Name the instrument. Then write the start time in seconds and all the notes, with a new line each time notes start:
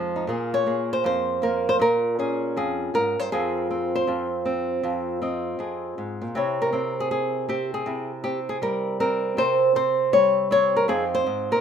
nylon-string guitar
Already playing: F2 F3 G#3 D#4 G#4
0.16 D#4
0.27 A#2 A#3 F4 G#4
0.54 C#5
0.66 A#3 G#4
0.93 C5
1.04 F2 C5
1.42 A#3 A#4
1.69 C5
1.79 A#2 A#4
2.19 C#4 G#4
2.57 F2 G#4
2.94 G#2 A#4
3.20 G2 C5
3.32 F2 C4 F4 G#4
3.71 C4
3.95 C5
4.07 F2 F4
4.45 C4
4.83 F2 F4
5.22 C4 D#5
5.59 F2 G#4
5.98 G#2
6.22 A#2
6.35 C3 C4 E4 C#5
6.62 A#4
6.73 C4 E4
7.00 G#4
7.11 G#4
7.49 C4 G4
7.74 G#4
7.86 C3 E4
8.24 C4 G4
8.49 G#4
8.62 G3 A#4
9.00 C4 A#4
9.37 C3 C5
9.75 C4 C5
10.13 G3 C#5
10.51 C4 C#5
10.76 A#4
10.88 F2 C4 D#4 G#4
11.15 C5
11.26 G#2
11.51 A#2 A#4